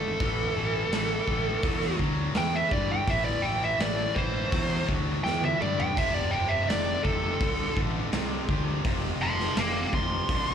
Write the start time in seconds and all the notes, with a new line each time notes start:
Already playing: G#1 D3 A3 A4
0.20 A1 A2 E3, kick, open hi-hat
0.56 A1 A2 E3
0.91 A1 A2 E3, snare, open hi-hat
1.27 A1 A2 E3, kick
1.63 E2 A2 F#3, kick, open hi-hat
1.82 snare
1.99 D2 A2 F#3, kick
2.35 E2 A2 E3 G5, snare, open hi-hat
2.55 E5
2.71 G2 A2 E3 D5, kick
2.91 G5
3.07 A1 A2 E3 E5, kick, open hi-hat
3.25 D5
3.42 A1 A2 E3 G5
3.64 E5
3.79 A1 A2 E3 D5, snare, open hi-hat
4.15 A1 A2 E3 C5, kick
4.50 E2 A2 F#3, kick, open hi-hat
4.86 D2 A2 F#3, kick
5.24 E2 A2 E3 G5, snare
5.44 E5, high tom
5.59 G2 A2 E3 D5, mid tom
5.79 G5, floor tom
5.95 F1 F2 C3 E5, kick, open hi-hat, crash
6.14 D5
6.31 F1 F2 C3 G5
6.48 E5
6.67 F1 F2 C3 D5, snare, open hi-hat
7.03 F1 F2 C3 A4, kick
7.39 C2 F2 D3, kick, open hi-hat
7.75 A1 F2 D3, kick
8.12 C2 F2 C3, snare, open hi-hat
8.48 D2 F2 C3, kick
8.84 F1 F2 C3, kick, open hi-hat
9.20 F1 F2 C3 A5 C6
9.40 snare
9.57 F1 F2 C3 F5 D6, snare, open hi-hat
9.93 F1 F2 C3 C6, kick
10.29 C2 F2 D3, kick, open hi-hat